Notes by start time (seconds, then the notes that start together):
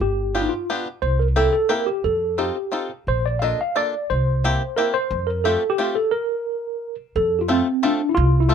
0.00 G1 G4
0.35 B3 D4 F4 G4
0.42 D#4
0.49 F4
0.70 B3 D4 F4 G4
1.02 C2 C5
1.19 A#4
1.36 A#3 C4 E4 G4 A4
1.53 A4
1.69 A#3 C4 E4 G4 A#4
1.86 G4
2.04 F2 A4
2.38 C4 D#4 F4 G4 A4
2.72 C4 D#4 F4 A4
3.07 A#1 C5
3.26 D5
3.39 A#3 D4 F4 A4 F5
3.44 D#5
3.61 F5
3.76 A#3 D4 F4 A4 D5
4.10 C2 C5
4.44 A#3 C4 E4 G4
4.76 A#3 C4 E4 G4 A#4
4.94 C5
5.11 F2
5.27 A#4
5.44 A3 C4 F4 G4 A4
5.70 G4
5.78 A3 C4 F4 G4
5.95 A4
6.11 A#4
7.16 F2 A4
7.39 F4 G4
7.48 A3 C4 F4 A4
7.83 A3 C4 D4 F4 A4
8.09 E4
8.14 C2 F4
8.40 E4
8.49 A3 C4 F4 A4